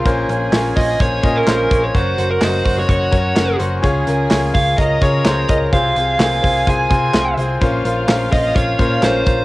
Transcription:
<<
  \new Staff \with { instrumentName = "Violin section" } { \time 4/4 \key bes \minor \tempo 4 = 127 <aes' aes''>1 | <ges' ges''>1 | <aes' aes''>2 <bes' bes''>2 | <aes' aes''>1 |
<f' f''>1 | }
  \new Staff \with { instrumentName = "Lead electric guitar" } { \time 4/4 \key bes \minor r4. ees''8 des''8. bes'4 des''16 | c''8. bes'16 c''8. des''16 des''4. r8 | r4. f''8 ees''8 des''4 ees''8 | f''4 f''4 aes''4. r8 |
r4. ees''8 des''4 c''4 | }
  \new Staff \with { instrumentName = "Grand piano" } { \time 4/4 \key bes \minor <des' f' bes' c''>8 <des' f' bes' c''>8 <des' f' bes' des''>8 <des' f' bes' c''>8 <des' f' bes' c''>8 <des' f' bes' ees''>8 <des' f' bes' c''>8 <des' f' bes' des''>8 | <des' ges' bes' des''>8 <des' ges' bes' c''>8 <des' ges' bes' ees''>8 <des' ges' bes' c''>8 <des' ges' bes' des''>8 <des' ges' bes' des''>8 <des' ges' bes' des''>8 <des' ges' bes' c''>8 | <des' f' aes' des''>8 <des' f' aes' bes'>8 <des' f' aes' des''>8 <des' f' aes' des''>8 <des' f' aes' ees''>8 <des' f' aes' des''>8 <des' f' aes' c''>8 <des' f' aes' bes'>8 | <c' f' aes' c''>8 <c' f' aes' c''>8 <c' f' aes' bes'>8 <c' f' aes' c''>8 <c' f' aes' c''>8 <c' f' aes' c''>8 <c' f' aes' c''>8 <c' f' aes' c''>8 |
<des' f' bes' c''>8 <des' f' bes' c''>8 <des' f' bes' c''>8 <des' f' bes' c''>8 <des' f' bes' c''>8 <des' f' bes' c''>8 <des' f' bes' c''>8 <des' f' bes' c''>8 | }
  \new Staff \with { instrumentName = "Grand piano" } { \clef bass \time 4/4 \key bes \minor bes,4. r2 r8 | r1 | des4. r2 r8 | c4. r2 r8 |
bes,4. r2 r8 | }
  \new Staff \with { instrumentName = "Picked electric bass" } { \clef bass \time 4/4 \key bes \minor bes,,8 bes,,8 bes,,8 bes,,8 bes,,8 bes,8 bes,,8 bes,,8 | ges,,8 ges,,8 ges,,8 ges,,8 ges,,8 ges,8 ges,,8 ges,,8 | des,8 des,8 des,8 des,8 des,8 des8 des,8 des,8 | c,8 c,8 c,8 c,8 c,8 c8 c,8 c,8 |
bes,,8 bes,,8 bes,,8 bes,,8 bes,,8 bes,8 bes,,8 bes,,8 | }
  \new DrumStaff \with { instrumentName = "Drums" } \drummode { \time 4/4 <hho hhp bd>8 <hho hhp>8 <hc hho hhp sn>8 <hho hhp bd sn>8 <hho hhp bd>8 <hho hhp bd>8 <hc hho hhp sn>8 <hho hhp bd>8 | <hho hhp bd>8 <hho hhp>8 <hc hho hhp sn>8 <hho hhp bd>8 <hho hhp bd>8 <hho hhp bd>8 <hc hho hhp sn>8 <hho hhp>8 | <hho hhp bd>8 <hho hhp>8 <hc hho hhp sn>8 <hho hhp bd>8 <hho hhp bd>8 <hho hhp bd>8 <hc hho hhp sn>8 <hho hhp bd>8 | <hho hhp bd>8 <hho hhp>8 <hc hho hhp sn>8 <hho hhp bd>8 <hho hhp bd>8 <hho hhp bd>8 <hc hho hhp sn>8 <hho hhp>8 |
<hho hhp bd>8 <hho hhp>8 <hc hho hhp sn>8 <hho hhp bd sn>8 <hho hhp bd>8 <hho hhp bd>8 <hc hho hhp sn>8 <hho hhp bd>8 | }
>>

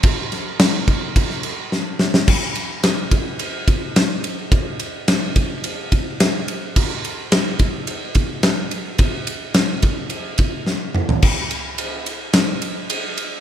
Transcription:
\new DrumStaff \with { instrumentName = "Drums" } \drummode { \time 4/4 \tempo 4 = 107 <cymc bd>8 <cymc sn>8 <cymc sn>8 <cymc bd>8 <cymc bd>16 sn16 cymc8 sn8 sn16 sn16 | <cymc bd>8 cymr8 <cymr sn>8 <bd cymr>8 cymr8 <bd cymr>8 <cymr sn>8 cymr8 | <bd cymr>8 cymr8 <cymr sn>8 <bd cymr>8 cymr8 <bd cymr>8 <cymr sn>8 cymr8 | <cymc bd>8 cymr8 <cymr sn>8 <bd cymr>8 cymr8 <bd cymr>8 <cymr sn>8 cymr8 |
<bd cymr>8 cymr8 <cymr sn>8 <bd cymr>8 cymr8 <bd cymr>8 sn8 toml16 tomfh16 | <cymc bd>8 cymr8 cymr8 cymr8 <cymr sn>8 cymr8 cymr8 cymr8 | }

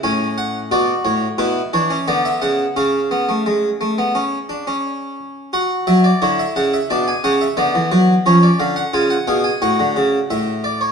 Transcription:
<<
  \new Staff \with { instrumentName = "Harpsichord" } { \time 4/4 \key fis \minor \tempo 4 = 88 << { gis''8 fis''8 d''8 cis''8 b'8 cis''8 d''16 e''16 fis''8 | eis''2.~ eis''8 r8 | fis''8 e''16 d''16 cis''16 e''16 fis''16 e''16 d''16 gis''16 fis''16 e''16 d''8 b'8 | cis''16 d''16 eis''16 fis''16 gis''16 fis''16 eis''16 gis''16 fis''4 e''8 d''16 cis''16 | } \\ { cis'4 fis'4 e'8 d'16 cis'16 b4 | cis'8 b16 a16 gis8 a16 b16 cis'8 d'16 cis'4~ cis'16 | fis'4 e'4 d'8 cis'8 b4 | cis'4 eis'8 gis'8 fis'2 | } >> }
  \new Staff \with { instrumentName = "Harpsichord" } { \clef bass \time 4/4 \key fis \minor a,4 b,8 a,8 b,8 e8 d8 cis8 | cis2.~ cis8 r8 | r8 fis8 d8 cis8 b,8 cis8 d16 e16 fis8 | eis8 d8 cis8 b,8 a,16 d16 cis8 a,4 | }
>>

